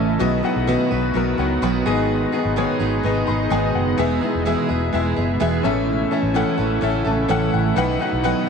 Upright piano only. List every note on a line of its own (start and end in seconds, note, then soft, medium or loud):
0.00 0.22 A2 medium
0.00 0.22 C#4 medium
0.00 0.22 A4 medium
0.00 0.21 D#5 medium
0.00 0.22 E5 loud
0.19 0.87 B2 medium
0.19 0.38 B3 medium
0.19 0.38 F#4 medium
0.19 0.38 D#5 loud
0.43 0.62 B3 medium
0.43 0.62 F#4 medium
0.43 0.62 F#5 medium
0.67 1.04 B3 medium
0.67 1.04 F#4 medium
0.67 1.05 D#5 medium
1.14 1.51 B3 medium
1.14 1.51 F#4 medium
1.14 1.52 A#4 medium
1.39 1.61 C#5 medium
1.39 1.61 F#5 medium
1.63 2.08 F#5 medium
1.63 2.07 B5 medium
1.85 2.53 G#2 medium
1.85 2.23 B3 medium
1.85 2.24 G#4 medium
1.85 2.24 D#5 loud
2.33 2.51 B3 medium
2.33 2.51 G#4 medium
2.33 2.52 D#5 medium
2.56 2.93 B3 medium
2.56 2.93 G#4 medium
2.56 2.94 C#5 medium
3.03 3.40 B3 medium
3.03 3.40 G#4 medium
3.03 3.41 D#5 medium
3.28 3.50 B5 medium
3.51 3.87 B3 medium
3.51 3.88 G#4 medium
3.51 3.88 D#5 medium
3.51 3.73 G#5 medium
3.75 3.97 F#5 medium
3.98 4.65 E3 medium
3.98 4.16 B3 medium
3.98 4.17 G#4 medium
3.98 4.17 E5 loud
4.21 4.40 B3 medium
4.21 4.40 G#4 medium
4.21 4.41 E5 medium
4.45 4.82 B3 medium
4.45 4.82 G#4 medium
4.45 4.83 E5 medium
4.92 5.29 B3 medium
4.92 5.29 G#4 medium
4.92 5.30 E5 medium
5.40 5.64 B3 medium
5.40 5.64 G#4 medium
5.40 5.64 E5 medium
5.63 6.31 A2 medium
5.63 6.01 C#4 medium
5.63 6.02 A4 medium
5.63 6.02 E5 loud
6.11 6.29 C#4 medium
6.11 6.30 A4 medium
6.11 6.30 E5 medium
6.34 6.71 C#4 medium
6.34 6.71 A4 medium
6.34 6.72 F#5 medium
6.82 7.18 C#4 medium
6.82 7.19 A4 medium
6.82 7.19 E5 medium
7.07 7.28 A5 medium
7.29 7.65 C#4 medium
7.29 7.66 A4 medium
7.29 7.52 F#5 medium
7.29 7.52 G#5 medium
7.54 7.75 F#5 medium
7.76 8.44 B2 medium
7.76 7.95 D#4 medium
7.76 7.95 B4 loud
7.76 7.96 F#5 loud
8.00 8.18 D#4 medium
8.00 8.19 B4 medium
8.00 8.19 F#5 medium
8.23 8.49 D#4 medium
8.23 8.49 B4 medium
8.23 8.49 F#5 medium